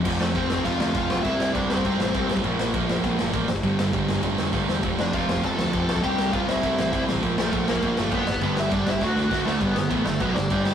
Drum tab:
CC |x---x---x---x---|x---x---x---x---|x---x---x---x---|x---x---x-------|
SD |--o---o---o---o-|--o---o---o---o-|--o---o---o---o-|--o---o---o-o-o-|
BD |o---o--oo---o--o|o---o--oo---o--o|o---o--oo---o--o|o---o--oo---o---|

CC |x---x---x---x---|x---x---x---x---|x---x---x---x---|x---x-----------|
SD |--o---o---o---o-|--o---o---o---o-|--o---o---o---o-|--o---o-o-o-o-o-|
BD |o---o--oo---o--o|o---o--oo---o--o|o---o--oo---o--o|o---o--oo---o---|

CC |x---x---x---x---|
SD |--o---o---o---o-|
BD |o---o---o---o---|